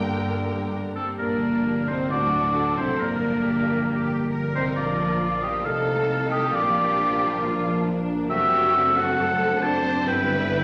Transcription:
0.00 0.99 G1 soft
0.00 0.99 G2 medium
0.00 1.13 G2 soft
0.00 0.93 D3 soft
0.00 0.97 D3 medium
0.00 0.93 A#3 soft
0.00 0.97 A#3 soft
0.00 1.49 A#3 soft
0.00 0.25 A#3 soft
0.00 1.64 G4 soft
0.00 0.25 G4 soft
0.00 0.96 A#4 medium
0.00 1.78 D5 soft
0.00 0.73 G5 medium
0.25 0.47 G3 soft
0.25 0.47 D4 soft
0.49 0.73 A#3 soft
0.49 0.73 G4 soft
0.73 0.97 G3 soft
0.73 0.97 D4 soft
0.96 1.19 A#3 soft
0.96 1.18 C4 soft
0.96 1.20 G4 soft
0.96 1.06 A4 medium
1.19 1.85 A#1 medium
1.19 2.13 G2 soft
1.19 1.84 A#3 medium
1.19 1.85 A#3 medium
1.19 1.87 D4 medium
1.19 1.90 A#4 medium
1.34 2.13 D3 soft
1.50 1.94 A#3 soft
1.65 2.13 G4 soft
1.80 2.13 D5 soft
1.88 2.11 C2 soft
1.88 2.11 C4 medium
1.88 2.11 D#4 medium
1.88 2.10 C5 medium
1.95 2.13 A#3 soft
2.10 2.77 D2 medium
2.10 3.02 A2 soft
2.10 2.78 D4 medium
2.10 2.77 D4 medium
2.10 2.77 F#4 medium
2.10 2.53 F#4 medium
2.10 2.77 D5 medium
2.25 3.02 F#3 soft
2.40 2.83 A3 soft
2.55 3.02 F#4 soft
2.55 3.00 A4 soft
2.70 3.02 C5 soft
2.77 2.86 C2 medium
2.77 3.00 C4 medium
2.77 3.01 C4 medium
2.77 2.88 C4 medium
2.77 3.01 E4 medium
2.77 3.01 C5 medium
2.85 3.02 A3 soft
3.00 4.31 A#1 medium
3.00 3.87 G2 soft
3.00 4.33 A#3 medium
3.00 4.31 A#3 medium
3.00 4.34 A#3 medium
3.00 4.33 D4 medium
3.00 4.33 A#4 medium
3.00 3.45 A#4 soft
3.15 4.02 D3 soft
3.29 3.73 A#3 soft
3.44 4.32 G4 soft
3.44 3.88 G4 soft
3.59 4.47 D5 soft
3.74 4.17 A#3 soft
3.88 4.79 G2 soft
3.88 4.33 G4 medium
4.04 4.79 D3 soft
4.18 4.61 A#3 soft
4.33 4.79 G4 soft
4.33 5.20 A#4 soft
4.48 5.35 D5 soft
4.55 4.76 C2 medium
4.55 4.76 C4 medium
4.55 4.65 C4 soft
4.55 4.63 C4 medium
4.55 4.76 D#4 medium
4.55 4.65 C5 medium
4.62 5.05 A#3 soft
4.76 5.61 A#1 medium
4.76 5.67 A#2 soft
4.76 5.61 F3 medium
4.76 5.61 F3 soft
4.76 5.61 A#3 soft
4.76 5.61 D4 medium
4.76 5.61 D4 soft
4.76 5.43 F4 soft
4.76 5.44 D5 medium
4.92 5.67 F3 soft
5.07 5.49 A#3 soft
5.21 5.65 F4 medium
5.21 5.67 F4 soft
5.36 5.67 D5 soft
5.42 5.65 G4 medium
5.42 5.67 D#5 medium
5.50 5.67 A#3 soft
5.64 6.52 C2 medium
5.64 6.55 C3 medium
5.64 6.50 D#3 soft
5.64 6.54 A3 medium
5.64 6.50 A3 medium
5.64 6.54 D#4 medium
5.64 6.50 D#4 medium
5.64 6.30 A4 medium
5.64 6.54 A4 medium
5.64 6.31 F5 medium
5.80 6.55 C4 soft
5.94 6.37 A3 soft
6.09 6.55 D#4 soft
6.24 6.55 D#5 soft
6.31 6.53 G4 medium
6.31 6.56 D#5 medium
6.39 6.55 A3 soft
6.53 8.30 A#1 medium
6.53 7.40 A#2 medium
6.53 8.26 F3 medium
6.53 8.26 A#3 medium
6.53 8.29 D4 medium
6.53 8.26 D4 medium
6.53 7.85 F4 medium
6.53 7.40 G4 medium
6.53 7.85 D5 medium
6.69 7.54 F3 soft
6.83 7.26 A#3 soft
6.98 7.84 D4 soft
7.13 7.99 A#4 soft
7.27 7.70 A#3 soft
7.41 8.32 A#2 medium
7.41 7.86 F4 medium
7.56 8.32 F3 soft
7.71 8.14 A#3 soft
7.85 8.73 D4 soft
7.85 8.30 D4 medium
8.00 8.32 A#4 soft
8.15 8.32 A#3 soft
8.30 10.03 F#1 medium
8.30 9.17 F#2 medium
8.30 10.64 D3 medium
8.30 10.03 A3 medium
8.30 10.64 C4 medium
8.30 10.03 C4 medium
8.30 10.64 D4 medium
8.30 9.17 F#4 medium
8.30 8.92 G4 medium
8.30 8.98 E5 loud
8.44 9.32 F#3 soft
8.59 9.02 C4 medium
8.74 9.61 D4 soft
8.89 9.76 A4 medium
8.97 9.63 A4 medium
8.97 9.64 F#5 medium
9.03 9.46 C4 medium
9.18 10.09 F#2 medium
9.18 9.63 A4 medium
9.33 10.09 F#3 medium
9.48 9.91 C4 medium
9.62 10.07 D4 medium
9.62 10.50 D4 medium
9.62 10.08 C5 medium
9.62 10.07 A5 loud
9.77 10.09 A4 medium
9.92 10.09 C4 medium
10.06 10.64 G1 medium
10.06 10.64 G2 medium
10.06 10.64 G3 medium
10.06 10.64 B3 medium
10.06 10.64 E4 medium
10.06 10.64 B4 medium
10.06 10.64 G5 loud
10.22 10.64 D3 medium
10.36 10.64 B3 medium
10.51 10.64 D4 medium

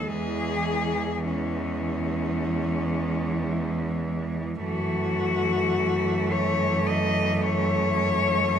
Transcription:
0.00 0.11 D#2 soft
0.07 4.63 E2 medium
0.07 1.23 E3 soft
0.07 1.24 G#3 soft
0.07 1.26 G#4 medium
1.26 4.61 E3 medium
1.26 4.62 G#3 soft
1.26 4.05 C#4 medium
4.63 8.59 F#2 medium
4.63 8.59 E3 medium
4.63 8.59 A3 medium
4.63 6.33 F#4 medium
6.32 6.88 C#5 medium
6.87 7.43 D#5 medium
7.42 8.59 C#5 medium

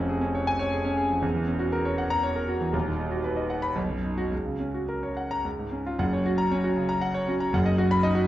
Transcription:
0.00 1.18 F1 medium
0.00 1.18 F2 medium
0.00 1.10 F3 medium
0.00 0.18 C#4 medium
0.09 0.30 G#4 medium
0.21 0.42 C#4 medium
0.35 0.55 C#5 medium
0.47 0.68 G#5 loud
0.59 0.80 C#5 medium
0.72 0.93 G#4 medium
0.85 1.05 C#4 medium
0.97 1.17 G#4 medium
1.10 1.23 F3 medium
1.21 2.69 E1 medium
1.21 2.69 E2 medium
1.35 1.55 E3 medium
1.47 1.67 C#4 medium
1.59 1.80 F#4 medium
1.72 1.93 A#4 medium
1.85 2.06 C#5 medium
1.98 2.18 F#5 medium
2.10 2.31 A#5 loud
2.23 2.43 C#5 medium
2.36 2.56 A#4 medium
2.48 2.68 F#4 medium
2.61 2.73 E3 medium
2.72 3.72 D#1 medium
2.72 3.73 D#2 medium
2.85 3.06 D#3 medium
2.99 3.19 D#4 medium
3.11 3.31 F#4 medium
3.24 3.44 B4 medium
3.37 3.57 D#5 medium
3.50 3.71 F#5 medium
3.62 3.76 B5 loud
3.76 4.29 B1 medium
3.89 4.11 F#2 medium
4.03 4.25 D#4 medium
4.18 4.31 F#4 medium
4.32 5.42 C#2 medium
4.46 4.68 C#3 medium
4.60 4.83 C#4 medium
4.74 4.97 F#4 medium
4.89 5.11 A#4 medium
5.03 5.25 C#5 medium
5.17 5.39 F#5 medium
5.31 5.45 A#5 loud
5.45 5.98 C#2 medium
5.59 5.81 G#2 medium
5.72 5.94 C#4 medium
5.87 6.00 F4 medium
5.99 7.50 F#1 medium
5.99 7.50 F#2 loud
5.99 6.21 F#5 medium
6.13 6.34 C#5 medium
6.26 6.47 F#4 medium
6.38 6.59 A#5 loud
6.51 6.92 C#4 medium
6.51 6.72 C#5 medium
6.64 6.85 F#4 medium
6.76 6.97 C#3 medium
6.89 7.10 A#5 medium
7.01 7.23 F#5 loud
7.14 7.36 C#5 medium
7.28 7.54 C#4 medium
7.28 7.49 F#4 medium
7.40 7.54 A#5 medium
7.53 8.27 F#1 loud
7.53 8.27 F#2 loud
7.53 7.74 F#5 medium
7.66 7.86 D#5 medium
7.78 7.99 F#4 loud
7.91 8.11 B5 loud
8.03 8.27 D#4 medium
8.03 8.23 D#5 loud
8.15 8.27 F#4 medium

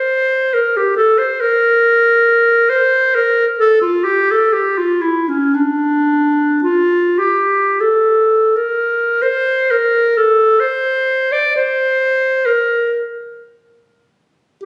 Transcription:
0.00 0.55 C5 medium
0.54 0.78 A#4 medium
0.76 0.96 G4 medium
0.96 1.20 A4 medium
1.18 1.42 C5 medium
1.41 2.71 A#4 medium
2.70 3.16 C5 medium
3.15 3.46 A#4 medium
3.59 3.81 A4 medium
3.81 4.05 F4 medium
4.04 4.32 G4 medium
4.31 4.54 A4 medium
4.53 4.79 G4 medium
4.78 5.03 F4 medium
5.01 5.30 E4 medium
5.28 5.56 C#4 soft
5.54 6.62 D4 medium
6.63 7.20 F4 medium
7.18 7.82 G4 soft
7.80 8.57 A4 soft
8.56 9.24 A#4 medium
9.22 9.72 C5 medium
9.71 10.19 A#4 medium
10.17 10.61 A4 medium
10.60 11.33 C5 medium
11.32 11.55 D5 medium
11.56 12.47 C5 medium
12.46 12.93 A#4 medium

